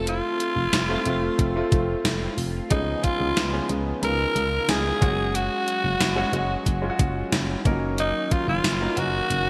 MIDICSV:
0, 0, Header, 1, 7, 480
1, 0, Start_track
1, 0, Tempo, 659341
1, 53, Time_signature, 4, 2, 24, 8
1, 6915, End_track
2, 0, Start_track
2, 0, Title_t, "Marimba"
2, 0, Program_c, 0, 12
2, 60, Note_on_c, 0, 77, 73
2, 1468, Note_off_c, 0, 77, 0
2, 1966, Note_on_c, 0, 75, 80
2, 2193, Note_off_c, 0, 75, 0
2, 2208, Note_on_c, 0, 77, 93
2, 2691, Note_off_c, 0, 77, 0
2, 2933, Note_on_c, 0, 82, 92
2, 3384, Note_off_c, 0, 82, 0
2, 3416, Note_on_c, 0, 80, 78
2, 3895, Note_off_c, 0, 80, 0
2, 3897, Note_on_c, 0, 78, 73
2, 5335, Note_off_c, 0, 78, 0
2, 5818, Note_on_c, 0, 75, 77
2, 6039, Note_off_c, 0, 75, 0
2, 6056, Note_on_c, 0, 77, 75
2, 6167, Note_off_c, 0, 77, 0
2, 6175, Note_on_c, 0, 77, 84
2, 6509, Note_off_c, 0, 77, 0
2, 6525, Note_on_c, 0, 78, 86
2, 6915, Note_off_c, 0, 78, 0
2, 6915, End_track
3, 0, Start_track
3, 0, Title_t, "Alto saxophone"
3, 0, Program_c, 1, 65
3, 64, Note_on_c, 1, 65, 101
3, 1470, Note_off_c, 1, 65, 0
3, 1975, Note_on_c, 1, 63, 100
3, 2212, Note_on_c, 1, 65, 116
3, 2223, Note_off_c, 1, 63, 0
3, 2693, Note_off_c, 1, 65, 0
3, 2945, Note_on_c, 1, 70, 120
3, 3420, Note_on_c, 1, 68, 110
3, 3431, Note_off_c, 1, 70, 0
3, 3895, Note_on_c, 1, 66, 104
3, 3906, Note_off_c, 1, 68, 0
3, 5334, Note_off_c, 1, 66, 0
3, 5824, Note_on_c, 1, 63, 97
3, 6058, Note_on_c, 1, 65, 88
3, 6069, Note_off_c, 1, 63, 0
3, 6176, Note_off_c, 1, 65, 0
3, 6180, Note_on_c, 1, 65, 95
3, 6539, Note_on_c, 1, 66, 118
3, 6550, Note_off_c, 1, 65, 0
3, 6915, Note_off_c, 1, 66, 0
3, 6915, End_track
4, 0, Start_track
4, 0, Title_t, "Grand piano"
4, 0, Program_c, 2, 0
4, 0, Control_c, 2, 64, 127
4, 0, Note_on_c, 2, 57, 81
4, 0, Note_on_c, 2, 60, 72
4, 0, Note_on_c, 2, 65, 92
4, 481, Note_off_c, 2, 57, 0
4, 484, Note_off_c, 2, 60, 0
4, 511, Note_off_c, 2, 65, 0
4, 648, Note_on_c, 2, 57, 93
4, 655, Note_on_c, 2, 60, 83
4, 656, Note_on_c, 2, 65, 103
4, 723, Note_off_c, 2, 57, 0
4, 727, Note_off_c, 2, 60, 0
4, 727, Note_off_c, 2, 65, 0
4, 774, Note_on_c, 2, 57, 85
4, 778, Note_on_c, 2, 60, 86
4, 782, Note_on_c, 2, 65, 101
4, 991, Note_off_c, 2, 57, 0
4, 993, Note_off_c, 2, 60, 0
4, 995, Note_off_c, 2, 65, 0
4, 1133, Note_on_c, 2, 57, 90
4, 1136, Note_on_c, 2, 60, 88
4, 1141, Note_on_c, 2, 65, 103
4, 1641, Note_off_c, 2, 57, 0
4, 1642, Note_off_c, 2, 60, 0
4, 1645, Note_off_c, 2, 65, 0
4, 1968, Note_on_c, 2, 56, 71
4, 1969, Note_on_c, 2, 53, 78
4, 1972, Note_on_c, 2, 59, 68
4, 1974, Note_on_c, 2, 61, 69
4, 1975, Note_on_c, 2, 68, 88
4, 1982, Control_c, 2, 64, 0
4, 2093, Control_c, 2, 64, 127
4, 2334, Note_off_c, 2, 53, 0
4, 2334, Note_off_c, 2, 56, 0
4, 2336, Note_off_c, 2, 59, 0
4, 2336, Note_off_c, 2, 61, 0
4, 2337, Note_off_c, 2, 68, 0
4, 2568, Note_on_c, 2, 53, 81
4, 2570, Note_on_c, 2, 56, 73
4, 2571, Note_on_c, 2, 59, 74
4, 2574, Note_on_c, 2, 61, 75
4, 2575, Note_on_c, 2, 68, 86
4, 2643, Note_off_c, 2, 53, 0
4, 2644, Note_off_c, 2, 56, 0
4, 2645, Note_off_c, 2, 59, 0
4, 2646, Note_off_c, 2, 61, 0
4, 2647, Note_off_c, 2, 68, 0
4, 2685, Note_on_c, 2, 53, 72
4, 2688, Note_on_c, 2, 56, 68
4, 2690, Note_on_c, 2, 59, 66
4, 2693, Note_on_c, 2, 61, 68
4, 2695, Note_on_c, 2, 68, 82
4, 3270, Note_off_c, 2, 53, 0
4, 3271, Note_off_c, 2, 56, 0
4, 3272, Note_off_c, 2, 59, 0
4, 3273, Note_off_c, 2, 61, 0
4, 3274, Note_off_c, 2, 68, 0
4, 3644, Note_on_c, 2, 56, 77
4, 3651, Note_on_c, 2, 61, 70
4, 3654, Note_on_c, 2, 66, 90
4, 3662, Control_c, 2, 64, 0
4, 3778, Control_c, 2, 64, 127
4, 4321, Note_off_c, 2, 56, 0
4, 4324, Note_off_c, 2, 61, 0
4, 4326, Note_off_c, 2, 66, 0
4, 4482, Note_on_c, 2, 56, 96
4, 4487, Note_on_c, 2, 61, 84
4, 4494, Note_on_c, 2, 66, 104
4, 4560, Note_off_c, 2, 56, 0
4, 4563, Note_off_c, 2, 61, 0
4, 4566, Note_off_c, 2, 66, 0
4, 4607, Note_on_c, 2, 56, 96
4, 4611, Note_on_c, 2, 61, 81
4, 4615, Note_on_c, 2, 66, 98
4, 4828, Note_off_c, 2, 56, 0
4, 4830, Note_off_c, 2, 61, 0
4, 4832, Note_off_c, 2, 66, 0
4, 4965, Note_on_c, 2, 56, 99
4, 4972, Note_on_c, 2, 61, 87
4, 4975, Note_on_c, 2, 65, 82
4, 5021, Note_on_c, 2, 66, 106
4, 5022, Note_off_c, 2, 65, 0
4, 5477, Note_off_c, 2, 56, 0
4, 5480, Note_off_c, 2, 61, 0
4, 5505, Note_off_c, 2, 66, 0
4, 5566, Note_on_c, 2, 53, 74
4, 5571, Note_on_c, 2, 58, 87
4, 5571, Note_on_c, 2, 61, 87
4, 5574, Note_on_c, 2, 63, 85
4, 5578, Note_on_c, 2, 70, 103
4, 5582, Control_c, 2, 64, 0
4, 5615, Note_on_c, 2, 54, 97
4, 5617, Note_off_c, 2, 53, 0
4, 5702, Control_c, 2, 64, 127
4, 6244, Note_off_c, 2, 58, 0
4, 6244, Note_off_c, 2, 61, 0
4, 6246, Note_off_c, 2, 63, 0
4, 6248, Note_off_c, 2, 70, 0
4, 6266, Note_off_c, 2, 54, 0
4, 6408, Note_on_c, 2, 54, 76
4, 6409, Note_on_c, 2, 58, 76
4, 6412, Note_on_c, 2, 61, 69
4, 6413, Note_on_c, 2, 63, 70
4, 6416, Note_on_c, 2, 70, 84
4, 6483, Note_off_c, 2, 54, 0
4, 6484, Note_off_c, 2, 58, 0
4, 6485, Note_off_c, 2, 61, 0
4, 6486, Note_off_c, 2, 63, 0
4, 6487, Note_off_c, 2, 70, 0
4, 6527, Note_on_c, 2, 54, 76
4, 6530, Note_on_c, 2, 58, 70
4, 6532, Note_on_c, 2, 61, 70
4, 6534, Note_on_c, 2, 63, 69
4, 6536, Note_on_c, 2, 70, 86
4, 6915, Note_off_c, 2, 54, 0
4, 6915, Note_off_c, 2, 58, 0
4, 6915, Note_off_c, 2, 61, 0
4, 6915, Note_off_c, 2, 63, 0
4, 6915, Note_off_c, 2, 70, 0
4, 6915, End_track
5, 0, Start_track
5, 0, Title_t, "Analog synth pad"
5, 0, Program_c, 3, 89
5, 0, Note_on_c, 3, 57, 83
5, 0, Note_on_c, 3, 60, 74
5, 0, Note_on_c, 3, 65, 93
5, 1944, Note_off_c, 3, 60, 0
5, 1952, Note_off_c, 3, 57, 0
5, 1971, Note_on_c, 3, 49, 81
5, 1972, Note_on_c, 3, 63, 79
5, 1973, Note_on_c, 3, 56, 78
5, 1974, Note_on_c, 3, 59, 78
5, 3626, Note_off_c, 3, 65, 0
5, 3635, Note_off_c, 3, 49, 0
5, 3636, Note_off_c, 3, 63, 0
5, 3637, Note_off_c, 3, 59, 0
5, 3653, Note_on_c, 3, 61, 85
5, 3657, Note_on_c, 3, 54, 74
5, 5544, Note_off_c, 3, 56, 0
5, 5556, Note_off_c, 3, 54, 0
5, 5572, Note_on_c, 3, 51, 81
5, 5572, Note_on_c, 3, 54, 75
5, 6915, Note_off_c, 3, 51, 0
5, 6915, Note_off_c, 3, 54, 0
5, 6915, Note_off_c, 3, 61, 0
5, 6915, End_track
6, 0, Start_track
6, 0, Title_t, "FM bass"
6, 0, Program_c, 4, 39
6, 0, Note_on_c, 4, 29, 109
6, 158, Note_off_c, 4, 29, 0
6, 409, Note_on_c, 4, 29, 102
6, 497, Note_off_c, 4, 29, 0
6, 530, Note_on_c, 4, 29, 110
6, 704, Note_off_c, 4, 29, 0
6, 772, Note_on_c, 4, 29, 104
6, 945, Note_off_c, 4, 29, 0
6, 1011, Note_on_c, 4, 29, 100
6, 1185, Note_off_c, 4, 29, 0
6, 1252, Note_on_c, 4, 29, 114
6, 1425, Note_off_c, 4, 29, 0
6, 1489, Note_on_c, 4, 29, 108
6, 1663, Note_off_c, 4, 29, 0
6, 1728, Note_on_c, 4, 29, 102
6, 1903, Note_off_c, 4, 29, 0
6, 1974, Note_on_c, 4, 37, 108
6, 2147, Note_off_c, 4, 37, 0
6, 2331, Note_on_c, 4, 37, 100
6, 2419, Note_off_c, 4, 37, 0
6, 2451, Note_on_c, 4, 37, 103
6, 2625, Note_off_c, 4, 37, 0
6, 2690, Note_on_c, 4, 37, 99
6, 2864, Note_off_c, 4, 37, 0
6, 2930, Note_on_c, 4, 37, 98
6, 3104, Note_off_c, 4, 37, 0
6, 3170, Note_on_c, 4, 37, 110
6, 3344, Note_off_c, 4, 37, 0
6, 3410, Note_on_c, 4, 37, 101
6, 3584, Note_off_c, 4, 37, 0
6, 3652, Note_on_c, 4, 30, 110
6, 3998, Note_off_c, 4, 30, 0
6, 4253, Note_on_c, 4, 30, 95
6, 4339, Note_off_c, 4, 30, 0
6, 4371, Note_on_c, 4, 30, 107
6, 4545, Note_off_c, 4, 30, 0
6, 4604, Note_on_c, 4, 30, 102
6, 4780, Note_off_c, 4, 30, 0
6, 4852, Note_on_c, 4, 30, 102
6, 5025, Note_off_c, 4, 30, 0
6, 5090, Note_on_c, 4, 30, 107
6, 5264, Note_off_c, 4, 30, 0
6, 5330, Note_on_c, 4, 30, 114
6, 5504, Note_off_c, 4, 30, 0
6, 5571, Note_on_c, 4, 30, 110
6, 5918, Note_off_c, 4, 30, 0
6, 6171, Note_on_c, 4, 30, 96
6, 6259, Note_off_c, 4, 30, 0
6, 6290, Note_on_c, 4, 30, 110
6, 6464, Note_off_c, 4, 30, 0
6, 6531, Note_on_c, 4, 30, 111
6, 6705, Note_off_c, 4, 30, 0
6, 6772, Note_on_c, 4, 30, 106
6, 6915, Note_off_c, 4, 30, 0
6, 6915, End_track
7, 0, Start_track
7, 0, Title_t, "Drums"
7, 52, Note_on_c, 9, 42, 99
7, 125, Note_off_c, 9, 42, 0
7, 292, Note_on_c, 9, 42, 80
7, 365, Note_off_c, 9, 42, 0
7, 530, Note_on_c, 9, 54, 76
7, 532, Note_on_c, 9, 38, 115
7, 532, Note_on_c, 9, 42, 101
7, 603, Note_off_c, 9, 54, 0
7, 604, Note_off_c, 9, 38, 0
7, 604, Note_off_c, 9, 42, 0
7, 768, Note_on_c, 9, 42, 79
7, 841, Note_off_c, 9, 42, 0
7, 1011, Note_on_c, 9, 36, 77
7, 1011, Note_on_c, 9, 42, 88
7, 1084, Note_off_c, 9, 36, 0
7, 1084, Note_off_c, 9, 42, 0
7, 1252, Note_on_c, 9, 36, 105
7, 1253, Note_on_c, 9, 42, 84
7, 1325, Note_off_c, 9, 36, 0
7, 1326, Note_off_c, 9, 42, 0
7, 1492, Note_on_c, 9, 38, 101
7, 1492, Note_on_c, 9, 42, 91
7, 1493, Note_on_c, 9, 54, 62
7, 1565, Note_off_c, 9, 38, 0
7, 1565, Note_off_c, 9, 42, 0
7, 1566, Note_off_c, 9, 54, 0
7, 1731, Note_on_c, 9, 46, 78
7, 1804, Note_off_c, 9, 46, 0
7, 1969, Note_on_c, 9, 42, 92
7, 1972, Note_on_c, 9, 36, 117
7, 2042, Note_off_c, 9, 42, 0
7, 2045, Note_off_c, 9, 36, 0
7, 2211, Note_on_c, 9, 42, 83
7, 2213, Note_on_c, 9, 36, 90
7, 2283, Note_off_c, 9, 42, 0
7, 2286, Note_off_c, 9, 36, 0
7, 2452, Note_on_c, 9, 54, 74
7, 2453, Note_on_c, 9, 38, 115
7, 2453, Note_on_c, 9, 42, 96
7, 2524, Note_off_c, 9, 54, 0
7, 2526, Note_off_c, 9, 38, 0
7, 2526, Note_off_c, 9, 42, 0
7, 2689, Note_on_c, 9, 42, 77
7, 2762, Note_off_c, 9, 42, 0
7, 2932, Note_on_c, 9, 42, 90
7, 3005, Note_off_c, 9, 42, 0
7, 3173, Note_on_c, 9, 42, 85
7, 3246, Note_off_c, 9, 42, 0
7, 3412, Note_on_c, 9, 38, 107
7, 3412, Note_on_c, 9, 42, 87
7, 3413, Note_on_c, 9, 54, 67
7, 3485, Note_off_c, 9, 38, 0
7, 3485, Note_off_c, 9, 42, 0
7, 3486, Note_off_c, 9, 54, 0
7, 3653, Note_on_c, 9, 36, 108
7, 3655, Note_on_c, 9, 42, 74
7, 3726, Note_off_c, 9, 36, 0
7, 3728, Note_off_c, 9, 42, 0
7, 3894, Note_on_c, 9, 42, 95
7, 3967, Note_off_c, 9, 42, 0
7, 4133, Note_on_c, 9, 42, 82
7, 4206, Note_off_c, 9, 42, 0
7, 4371, Note_on_c, 9, 54, 79
7, 4372, Note_on_c, 9, 38, 118
7, 4373, Note_on_c, 9, 42, 102
7, 4444, Note_off_c, 9, 54, 0
7, 4445, Note_off_c, 9, 38, 0
7, 4445, Note_off_c, 9, 42, 0
7, 4610, Note_on_c, 9, 42, 79
7, 4683, Note_off_c, 9, 42, 0
7, 4850, Note_on_c, 9, 36, 84
7, 4852, Note_on_c, 9, 42, 90
7, 4923, Note_off_c, 9, 36, 0
7, 4925, Note_off_c, 9, 42, 0
7, 5091, Note_on_c, 9, 36, 108
7, 5091, Note_on_c, 9, 42, 86
7, 5164, Note_off_c, 9, 36, 0
7, 5164, Note_off_c, 9, 42, 0
7, 5332, Note_on_c, 9, 42, 87
7, 5333, Note_on_c, 9, 38, 102
7, 5333, Note_on_c, 9, 54, 64
7, 5405, Note_off_c, 9, 38, 0
7, 5405, Note_off_c, 9, 42, 0
7, 5406, Note_off_c, 9, 54, 0
7, 5571, Note_on_c, 9, 36, 105
7, 5573, Note_on_c, 9, 42, 75
7, 5644, Note_off_c, 9, 36, 0
7, 5646, Note_off_c, 9, 42, 0
7, 5811, Note_on_c, 9, 42, 93
7, 5884, Note_off_c, 9, 42, 0
7, 6052, Note_on_c, 9, 42, 84
7, 6053, Note_on_c, 9, 36, 92
7, 6125, Note_off_c, 9, 42, 0
7, 6126, Note_off_c, 9, 36, 0
7, 6291, Note_on_c, 9, 54, 77
7, 6293, Note_on_c, 9, 38, 111
7, 6293, Note_on_c, 9, 42, 102
7, 6364, Note_off_c, 9, 54, 0
7, 6365, Note_off_c, 9, 38, 0
7, 6366, Note_off_c, 9, 42, 0
7, 6530, Note_on_c, 9, 42, 79
7, 6603, Note_off_c, 9, 42, 0
7, 6774, Note_on_c, 9, 42, 90
7, 6847, Note_off_c, 9, 42, 0
7, 6915, End_track
0, 0, End_of_file